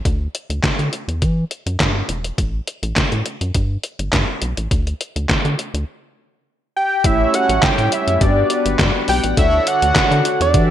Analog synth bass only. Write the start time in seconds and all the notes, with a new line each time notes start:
0.05 D2
0.50 D2
0.63 D3
0.79 D3
1.08 E2
1.22 E3
1.66 F#2
1.80 G2
2.09 E1
2.38 A1
2.83 A1
2.96 A2
3.12 A2
3.41 F#2
3.55 G2
3.99 G1
4.13 G2
4.42 B1
4.58 A1
4.71 D2
5.16 D2
5.29 D3
5.45 D3
5.74 D2
7.04 A1
7.49 A1
7.63 A2
7.78 A2
8.07 F#2
8.21 G2
8.66 G1
8.79 G2
9.08 B1
9.24 A1
9.37 D2
9.82 D2
9.96 D3
10.11 D3
10.40 E2
10.54 E3